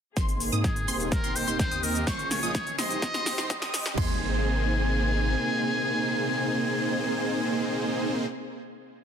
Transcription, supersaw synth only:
0.17 0.49 A#3 medium
0.17 0.49 C4 medium
0.17 0.49 D#4 medium
0.17 0.49 G#4 medium
0.17 0.49 C5 loud
0.52 0.77 A#3 medium
0.52 0.77 C4 medium
0.52 0.77 D#4 medium
0.52 0.77 G#4 medium
0.52 0.77 D#5 medium
0.88 1.21 A#3 medium
0.88 1.21 C4 medium
0.88 1.21 D#4 medium
0.88 1.21 G4 medium
0.88 1.21 C5 loud
1.24 1.45 A#3 medium
1.24 1.45 C4 medium
1.24 1.45 D#4 medium
1.24 1.45 G4 medium
1.24 1.45 C5 loud
1.48 1.69 A#3 medium
1.48 1.69 C4 medium
1.48 1.69 D#4 medium
1.48 1.69 G4 medium
1.48 1.69 C5 medium
1.71 2.04 A#3 medium
1.71 2.04 C4 medium
1.71 2.04 D#4 medium
1.71 2.04 G4 medium
1.71 2.04 D#5 medium
2.07 2.40 C#4 medium
2.07 2.40 C#5 loud
2.43 2.67 A#3 medium
2.43 2.67 C#4 medium
2.43 2.67 F4 medium
2.43 2.67 G#4 medium
2.43 2.67 D#5 medium
2.79 3.11 D#4 medium
2.79 3.11 G4 medium
2.79 3.11 C5 loud
3.14 3.35 D#4 medium
3.14 3.35 G4 medium
3.14 3.35 C5 loud
3.38 3.59 D#4 medium
3.38 3.59 G4 medium
3.38 3.59 C5 loud
3.62 3.95 D#4 medium
3.62 3.95 G4 medium
3.62 3.95 D#5 medium
3.98 8.26 A#3 medium
3.98 8.26 C4 medium
3.98 8.26 D#4 medium
3.98 8.26 G#4 medium
3.98 8.26 C5 medium

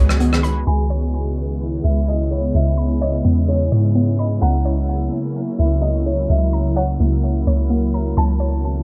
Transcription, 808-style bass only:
0.00 0.64 C#2 loud
0.67 1.80 C#2 loud
1.84 2.52 C#2 loud
2.55 3.22 C#2 loud
3.25 3.70 E2 loud
3.72 4.39 G#2 loud
4.42 5.10 C#2 loud
5.59 6.27 C#2 loud
6.30 6.97 C#2 loud
7.00 7.45 C#2 loud
7.47 8.14 C#2 loud
8.17 8.83 C#2 loud

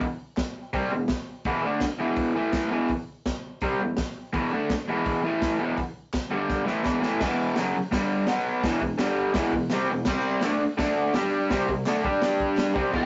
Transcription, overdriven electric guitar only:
0.73 0.91 C3 medium
0.73 0.92 G3 medium
0.73 0.92 C4 loud
0.92 1.06 E2 medium
0.92 1.07 B2 medium
1.46 1.63 E2 medium
1.46 1.64 B2 loud
1.46 1.64 E3 loud
1.64 1.81 D3 medium
1.64 1.82 A3 medium
1.64 1.83 D4 medium
1.82 muted overdriven electric guitar stroke medium
1.99 2.35 E2 medium
1.99 2.34 B2 loud
1.99 2.35 E3 medium
2.35 2.70 A2 medium
2.35 2.71 E3 medium
2.35 2.72 A3 loud
2.70 2.89 E2 loud
2.70 2.89 B2 medium
2.70 2.90 E3 loud
3.63 3.80 C3 loud
3.63 3.80 G3 medium
3.63 3.81 C4 loud
3.81 3.95 E2 medium
3.81 3.95 B2 medium
4.33 4.51 E2 loud
4.33 4.52 B2 loud
4.33 4.52 E3 loud
4.52 4.70 D3 medium
4.52 4.71 A3 medium
4.52 4.71 D4 loud
4.70 muted overdriven electric guitar stroke medium
4.89 5.24 E2 loud
4.89 5.23 B2 loud
4.89 5.23 E3 loud
5.24 5.59 A2 loud
5.24 5.59 E3 medium
5.24 5.60 A3 loud
5.59 5.77 E2 medium
5.59 5.78 B2 loud
5.59 5.78 E3 medium
6.31 6.67 G2 medium
6.31 6.65 D3 medium
6.31 6.66 G3 loud
6.65 6.84 A2 medium
6.65 6.84 E3 medium
6.65 6.85 A3 medium
6.83 7.02 E2 medium
6.83 7.01 B2 loud
6.83 7.01 E3 medium
7.01 7.20 A2 medium
7.01 7.21 E3 medium
7.01 7.21 A3 medium
7.21 7.56 E2 loud
7.21 7.57 B2 loud
7.21 7.58 E3 loud
7.56 7.74 F#2 loud
7.56 7.75 C#3 loud
7.56 7.75 F#3 loud
7.76 muted overdriven electric guitar stroke medium
7.91 8.28 G2 medium
7.91 8.27 D3 medium
7.91 8.28 G3 loud
8.27 8.63 B2 medium
8.27 8.64 F#3 medium
8.27 8.64 B3 loud
8.63 8.80 E2 medium
8.63 8.80 B2 loud
8.63 8.82 E3 loud
8.81 8.96 E2 medium
8.81 8.96 B2 medium
8.98 9.34 G2 loud
8.98 9.35 D3 loud
8.98 9.35 G3 loud
9.34 9.53 E2 loud
9.34 9.53 B2 loud
9.34 9.53 E3 loud
9.54 9.68 E2 medium
9.54 9.68 B2 medium
9.72 9.89 C3 medium
9.72 9.89 G3 loud
9.72 9.90 C4 medium
9.90 10.04 E2 medium
9.90 10.04 B2 medium
10.07 10.42 C3 loud
10.07 10.43 G3 loud
10.07 10.43 C4 loud
10.43 10.60 D3 medium
10.43 10.61 A3 loud
10.43 10.62 D4 loud
10.61 muted overdriven electric guitar stroke medium
10.78 11.13 D3 medium
10.78 11.14 A3 medium
10.78 11.14 D4 loud
11.15 11.50 G3 medium
11.15 11.50 D4 loud
11.15 11.50 G4 loud
11.50 11.67 C3 medium
11.50 11.67 G3 loud
11.50 11.68 C4 loud
11.69 11.83 C3 medium
11.69 11.83 G3 medium
11.87 12.04 D3 medium
11.87 12.03 A3 medium
11.87 12.04 D4 loud
12.04 12.75 G3 medium
12.04 12.75 D4 loud
12.04 12.76 G4 loud
12.74 12.92 C3 loud
12.74 12.93 G3 loud
12.74 12.93 C4 loud
12.93 13.06 E2 loud
12.93 13.06 B2 loud
12.93 13.06 E3 loud

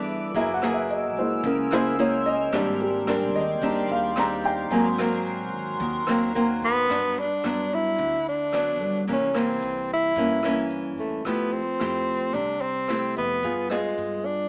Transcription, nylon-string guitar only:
0.00 0.33 G2 medium
0.00 0.33 E3 medium
0.00 0.33 B3 medium
0.00 0.33 D4 medium
0.35 1.42 F#3 medium
0.35 0.51 A#3 medium
0.35 0.51 E4 medium
0.35 0.52 G#4 medium
0.63 1.68 A#3 medium
0.63 1.67 E4 medium
0.63 1.68 G#4 medium
1.45 2.51 C#3 medium
1.72 1.95 A#3 medium
1.72 1.95 E4 medium
1.72 1.95 G#4 medium
1.99 2.34 A#3 medium
1.99 2.34 E4 medium
1.99 2.34 G#4 medium
2.52 3.59 G#2 medium
2.52 3.03 G3 medium
2.52 3.03 C4 medium
2.52 3.03 D4 medium
3.07 3.43 G3 medium
3.07 3.43 C4 medium
3.07 3.43 D4 medium
3.62 4.69 D#3 medium
3.62 4.13 G3 medium
3.62 4.13 C4 medium
3.62 4.13 D4 medium
4.17 4.69 G3 medium
4.17 4.69 C4 medium
4.17 4.70 D4 medium
4.71 5.78 G#2 medium
4.71 4.87 F#3 medium
4.71 4.88 A#3 medium
4.71 4.88 C4 medium
4.99 6.03 F#3 medium
4.99 6.03 A#3 medium
4.99 6.03 C4 medium
5.81 6.87 D#3 medium
6.09 6.31 F#3 medium
6.09 6.31 A#3 medium
6.09 6.32 C4 medium
6.35 6.85 F#3 medium
6.35 6.85 A#3 medium
6.35 6.86 C4 medium
6.89 7.96 G2 medium
6.89 7.25 F#3 soft
6.89 7.25 B3 medium
6.89 7.25 D4 medium
7.45 8.18 F#3 soft
7.45 8.17 B3 soft
7.45 8.18 D4 soft
7.98 9.05 D3 soft
8.53 9.05 F#3 soft
8.53 9.06 B3 medium
8.53 9.06 D4 medium
9.08 10.14 C3 medium
9.08 9.30 E3 medium
9.08 9.31 A#3 medium
9.08 9.31 C#4 medium
9.34 10.12 E3 soft
9.34 10.12 A#3 soft
10.17 11.23 G2 soft
10.17 10.40 E3 soft
10.17 10.40 A#3 medium
10.17 10.40 C#4 medium
10.45 11.22 E3 medium
10.45 11.22 A#3 medium
10.45 11.22 C#4 medium
11.27 12.32 F3 medium
11.27 11.61 A3 medium
11.27 11.61 E4 soft
11.27 11.61 G4 soft
11.80 12.53 A3 medium
11.80 12.54 E4 soft
11.80 12.54 G4 medium
12.34 13.40 C3 soft
12.89 13.41 A3 medium
12.89 13.42 E4 soft
12.89 13.42 G4 medium
13.43 13.66 B3 soft
13.43 13.67 F4 soft
13.43 13.67 G#4 medium
13.71 14.48 B3 medium
13.71 14.48 F4 medium
13.71 14.49 G#4 medium

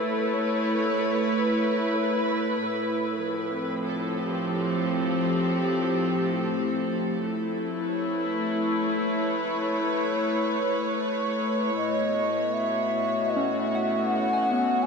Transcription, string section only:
0.00 2.60 A3 medium
0.00 4.14 E4 medium
0.00 3.81 B4 medium
0.00 2.60 C#5 medium
2.62 7.20 A2 medium
3.14 7.19 F3 medium
3.51 7.20 C4 medium
3.86 8.63 A4 medium
4.24 7.20 G4 medium
7.21 11.79 A3 medium
7.35 11.79 E4 medium
7.76 13.62 B4 medium
7.84 14.87 C#5 medium
11.78 14.87 A2 medium
11.98 14.87 B3 medium
11.98 14.87 F#4 medium
12.73 14.87 F#5 medium

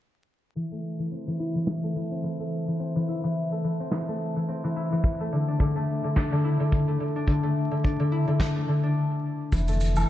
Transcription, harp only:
0.56 0.98 E3 medium
0.71 1.83 A3 medium
0.99 1.26 E3 medium
1.11 2.11 C4 medium
1.27 1.54 E3 medium
1.39 3.08 E4 medium
1.55 1.94 E3 medium
1.83 2.39 A3 medium
1.96 2.22 E3 medium
2.11 2.79 C4 medium
2.24 2.66 E3 medium
2.40 3.51 A3 medium
2.67 2.94 E3 medium
2.80 3.80 C4 medium
2.96 3.22 E3 medium
3.08 4.76 E4 medium
3.24 3.63 E3 medium
3.52 4.08 A3 medium
3.64 3.91 E3 medium
3.80 4.48 C4 medium
3.92 4.35 E3 medium
4.08 5.20 A3 medium
4.36 4.63 E3 medium
4.48 7.48 C4 medium
4.64 4.91 E3 medium
4.76 6.44 E4 medium
4.92 5.09 E3 medium
5.20 5.75 A3 medium
5.32 5.59 D3 medium
5.48 6.16 D4 medium
5.60 6.03 D3 medium
5.76 6.87 A3 medium
6.04 6.31 D3 medium
6.16 7.15 D4 medium
6.32 6.59 D3 medium
6.44 8.11 E4 medium
6.60 6.99 D3 medium
6.88 7.43 A3 medium
7.00 7.27 D3 medium
7.16 7.83 D4 medium
7.28 7.70 D3 medium
7.43 8.55 A3 medium
7.71 7.98 D3 medium
7.84 8.83 D4 medium
8.00 8.26 D3 medium
8.12 10.10 E4 medium
8.28 8.67 D3 medium
8.56 9.68 A3 medium
8.68 9.57 D3 medium
8.83 10.10 D4 medium
9.52 9.95 E3 medium
9.68 10.10 A3 medium
9.96 10.10 E3 medium

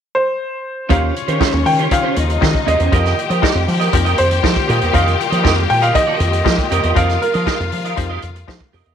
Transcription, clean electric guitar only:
0.89 1.13 C#4 medium
0.89 1.13 G4 medium
0.89 1.14 C5 medium
1.15 muted clean electric guitar stroke soft
1.28 1.39 C#4 medium
1.28 1.40 G4 medium
1.28 1.41 C5 medium
1.40 1.58 C#4 medium
1.40 1.53 G4 medium
1.40 1.51 C5 medium
1.52 muted clean electric guitar stroke soft
1.65 muted clean electric guitar stroke soft
1.78 1.90 C#4 medium
1.78 1.91 G4 medium
1.78 1.92 C5 medium
1.91 muted clean electric guitar stroke soft
2.03 2.15 C#4 medium
2.03 2.16 G4 medium
2.03 2.16 C5 medium
2.16 muted clean electric guitar stroke soft
2.29 muted clean electric guitar stroke soft
2.41 muted clean electric guitar stroke soft
2.54 muted clean electric guitar stroke soft
2.66 2.80 C#4 medium
2.66 2.79 G4 medium
2.66 2.78 C5 medium
2.79 2.95 C#4 medium
2.79 2.91 G4 medium
2.79 2.93 C5 medium
2.92 3.16 G4 medium
2.92 3.16 A#4 medium
2.92 3.17 D#5 medium
3.17 muted clean electric guitar stroke soft
3.30 3.41 G4 medium
3.30 3.42 A#4 medium
3.30 3.43 D#5 medium
3.42 3.62 G4 medium
3.42 3.55 A#4 medium
3.42 3.54 D#5 medium
3.55 muted clean electric guitar stroke soft
3.67 muted clean electric guitar stroke soft
3.80 3.91 G4 soft
3.80 3.92 A#4 medium
3.80 3.93 D#5 medium
3.93 muted clean electric guitar stroke soft
4.05 4.17 G4 medium
4.05 4.17 A#4 medium
4.05 4.18 D#5 medium
4.18 muted clean electric guitar stroke soft
4.30 muted clean electric guitar stroke soft
4.43 muted clean electric guitar stroke soft
4.55 muted clean electric guitar stroke soft
4.68 4.81 G4 medium
4.68 4.80 A#4 medium
4.68 4.79 D#5 medium
4.80 4.92 G4 medium
4.80 4.93 A#4 medium
4.80 4.94 D#5 medium
4.93 5.17 G4 medium
4.93 5.18 A#4 medium
4.93 5.18 D#5 loud
5.19 muted clean electric guitar stroke soft
5.31 5.43 G4 medium
5.31 5.44 A#4 medium
5.31 5.45 D#5 medium
5.44 5.63 G4 medium
5.44 5.57 A#4 medium
5.44 5.56 D#5 medium
5.57 muted clean electric guitar stroke soft
5.69 muted clean electric guitar stroke soft
5.82 5.93 G4 medium
5.82 5.94 A#4 medium
5.82 5.95 D#5 medium
5.95 muted clean electric guitar stroke soft
6.07 6.19 G4 medium
6.07 6.19 A#4 medium
6.07 6.20 D#5 medium
6.20 muted clean electric guitar stroke soft
6.33 muted clean electric guitar stroke soft
6.45 muted clean electric guitar stroke soft
6.58 muted clean electric guitar stroke soft
6.71 6.84 G4 medium
6.71 6.83 A#4 medium
6.71 6.82 D#5 medium
6.83 6.95 G4 soft
6.83 6.95 A#4 medium
6.83 6.96 D#5 medium
6.96 7.19 G4 medium
6.96 7.20 A#4 loud
6.96 7.20 D#5 loud
7.21 muted clean electric guitar stroke soft
7.34 7.45 G4 soft
7.34 7.47 A#4 medium
7.34 7.47 D#5 medium
7.47 7.65 G4 medium
7.47 7.59 A#4 medium
7.47 7.58 D#5 medium
7.59 muted clean electric guitar stroke soft
7.72 muted clean electric guitar stroke soft
7.85 7.96 G4 soft
7.85 7.97 A#4 medium
7.85 7.97 D#5 medium
7.97 muted clean electric guitar stroke soft
8.09 8.21 G4 medium
8.09 8.22 A#4 medium
8.09 8.23 D#5 medium
8.23 muted clean electric guitar stroke medium
8.35 muted clean electric guitar stroke soft
8.48 muted clean electric guitar stroke soft
8.60 muted clean electric guitar stroke soft
8.73 8.86 G4 medium
8.73 8.85 A#4 medium
8.73 8.84 D#5 medium
8.85 8.95 G4 medium
8.85 8.95 A#4 medium
8.85 8.95 D#5 medium

